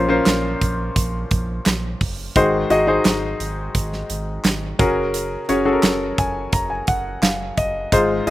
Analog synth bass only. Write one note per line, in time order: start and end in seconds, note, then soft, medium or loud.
0.00 0.20 A#1 loud
0.26 0.55 A#1 medium
0.61 0.90 A#1 medium
0.96 1.24 A#1 loud
1.31 1.60 A#1 medium
1.66 1.95 A#1 medium
2.01 2.29 F#1 medium
2.36 2.64 G#1 loud
2.70 2.99 G#1 medium
3.05 3.34 G#1 medium
3.40 3.69 G#1 medium
3.75 4.03 G#1 loud
4.10 4.38 G#1 loud
4.45 4.73 G#1 loud
4.79 5.36 F#1 medium
5.49 5.78 F#1 medium
5.83 6.12 F#1 medium
6.18 6.47 F#1 medium
6.53 6.81 F#1 loud
6.88 7.17 F#1 loud
7.22 7.51 F#1 loud
7.58 7.86 F#1 medium
7.92 8.21 G#1 loud
8.27 8.30 G#1 medium